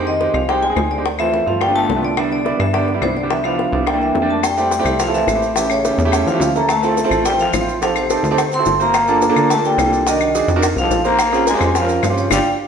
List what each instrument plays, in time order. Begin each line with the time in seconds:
Already playing: analog synth bass F2, grand piano G#3 C4 D#4 G4
0.06 trombone D#3, vibraphone D#5, high bongo
0.20 grand piano G#3 C4 D#4 G4, high bongo
0.33 analog synth bass C2, trombone F3, vibraphone F5, claves
0.47 trombone G3, grand piano G#3 C4 D#4 G4, vibraphone G5, high bongo
0.62 trombone G#3, vibraphone G#5, high bongo
0.70 grand piano G#3 C4 D#4 G#4
0.76 analog synth bass D2, high bongo, low bongo, claves
0.90 trombone D3, vibraphone D5, high bongo
0.98 grand piano G#3 C4 D#4 G4
1.06 high bongo
1.19 trombone E3, grand piano A3 C4 E4 F4, vibraphone E5, high bongo, claves
1.34 high bongo
1.46 analog synth bass G1, trombone F3, grand piano A3 C4 E4 F4, vibraphone F5
1.60 trombone G3, vibraphone G5, high bongo, claves
1.68 grand piano A3 B3 D4 F4
1.74 trombone A3, vibraphone A5, high bongo
1.89 analog synth bass C2, high bongo, low bongo
1.96 grand piano A3 B3 D4 F4
2.03 trombone D3, vibraphone D5, high bongo
2.17 grand piano G3 B3 D4 E4, high bongo, claves
2.31 trombone D3, vibraphone D5, high bongo
2.45 grand piano G3 B3 D4 E4, high bongo
2.60 analog synth bass G2, trombone E3, vibraphone E5, claves
2.73 trombone D3, grand piano G3 B3 D4 G4, vibraphone D5, high bongo
2.88 high bongo
2.94 grand piano G3 B3 D4 E4
3.01 analog synth bass C2, trombone C3, vibraphone C5, high bongo, low bongo, claves
3.17 trombone D3, vibraphone D5, high bongo
3.23 grand piano G3 B3 D4 G4
3.31 trombone E3, vibraphone E5, high bongo
3.44 trombone F3, grand piano G3 B3 D4 E4, vibraphone F5, high bongo, claves
3.59 high bongo
3.73 analog synth bass C2, grand piano G3 B3 D4 E4
3.87 trombone G3, vibraphone G5, high bongo, claves
3.94 grand piano G3 A#3 D4 E4
4.02 trombone E3, vibraphone E5, high bongo
4.15 analog synth bass F2, high bongo, low bongo
4.22 grand piano G3 A#3 D4 G4
4.29 trombone A3, vibraphone A5, high bongo
4.43 trombone G3, vibraphone G5, high bongo, claves, maracas
4.57 grand piano A3 C4 E4 G4, high bongo, maracas
4.71 high bongo, maracas
4.79 grand piano A3 C4 E4 G4
4.85 analog synth bass C2, claves, maracas
4.99 trombone F3, vibraphone F5, high bongo, maracas
5.08 grand piano A3 C4 E4 A4
5.14 trombone E3, vibraphone E5, high bongo, maracas
5.27 analog synth bass A1, high bongo, low bongo, claves, maracas
5.35 grand piano A3 C4 E4 G4
5.42 high bongo, maracas
5.55 trombone E3, grand piano A3 C#4 E4 G4, vibraphone E5, high bongo, maracas
5.70 trombone C#3, vibraphone C#5, high bongo, claves, maracas
5.85 grand piano A3 C#4 E4 G4, high bongo, maracas
5.98 analog synth bass E2, maracas
6.05 grand piano A3 C#4 E4 G4
6.12 high bongo, claves, maracas
6.26 analog synth bass E2, trombone F3, vibraphone F5, high bongo, maracas
6.34 grand piano A3 C#4 E4 G4
6.40 analog synth bass D2, high bongo, low bongo, maracas
6.55 grand piano A3 C#4 E4 A4, trombone A#3, vibraphone A#5, high bongo, maracas
6.69 trombone A3, vibraphone A5, high bongo, claves, maracas
6.83 grand piano C4 E4 F4 A4, high bongo, maracas
6.97 high bongo, maracas
7.04 grand piano C4 E4 F4 A4
7.11 analog synth bass A1, claves, maracas
7.25 trombone G3, vibraphone G5, high bongo, maracas
7.32 grand piano C4 E4 F4 A4
7.39 trombone F3, vibraphone F5, high bongo, maracas
7.53 analog synth bass A1, high bongo, low bongo, claves, maracas
7.61 grand piano C4 E4 F4 C5
7.68 high bongo, maracas
7.81 trombone F3, grand piano C4 D#4 G4 A4, vibraphone F5, high bongo, maracas
7.96 trombone C3, vibraphone C5, high bongo, claves, maracas
8.10 grand piano C4 D#4 G4 A4, high bongo, maracas
8.23 analog synth bass D2, maracas
8.31 grand piano C4 D#4 G4 A4
8.38 high bongo, claves, maracas
8.52 trombone C4, vibraphone C6, high bongo, maracas
8.59 grand piano C4 E4 F#4 A4
8.65 analog synth bass G1, high bongo, low bongo, maracas
8.80 trombone A#3, grand piano C4 E4 F#4 C5, vibraphone A#5, high bongo, maracas
8.94 high bongo, claves, maracas
9.08 grand piano A#3 D4 F4 A4, high bongo, maracas
9.22 high bongo, maracas
9.29 grand piano A#3 D4 F4 A4
9.36 analog synth bass D2, claves, maracas
9.50 trombone A3, vibraphone A5, high bongo, maracas
9.57 grand piano A#3 D4 F4 A4
9.65 trombone G3, vibraphone G5, high bongo, maracas
9.78 analog synth bass C2, high bongo, low bongo, claves, maracas
9.86 grand piano A#3 D4 F4 A4
9.93 high bongo, maracas
10.07 trombone D#3, grand piano D4 D#4 F#4 A#4, vibraphone D#5, high bongo, maracas
10.21 high bongo, claves, maracas
10.35 grand piano D4 D#4 F#4 G#4, high bongo, maracas
10.48 analog synth bass F2, maracas
10.56 grand piano D4 D#4 F#4 A#4
10.62 high bongo, claves, maracas
10.76 analog synth bass C2, trombone F3, vibraphone F5, high bongo, maracas
10.83 grand piano C4 D#4 G4 A4
10.90 analog synth bass A#1, high bongo, low bongo, maracas
11.04 trombone A#3, grand piano C4 D#4 G4 C5, vibraphone A#5, high bongo, maracas
11.19 high bongo, claves, maracas
11.32 grand piano C4 C#4 F4 G#4, high bongo, maracas
11.47 trombone G#3, vibraphone G#5, high bongo, maracas
11.54 grand piano C4 C#4 F4 G4
11.61 analog synth bass F2, claves, maracas
11.75 trombone F3, vibraphone F5, high bongo, maracas
11.82 grand piano C4 C#4 F4 A#4
11.89 high bongo, maracas
12.03 analog synth bass G2, high bongo, low bongo, claves, maracas
12.10 grand piano C4 C#4 F4 G4
12.18 trombone C#3, vibraphone C#5, high bongo, maracas
12.30 analog synth bass G1, trombone G3, grand piano D4 F4 G4, vibraphone D5 F5 G5, low bongo, claves, maracas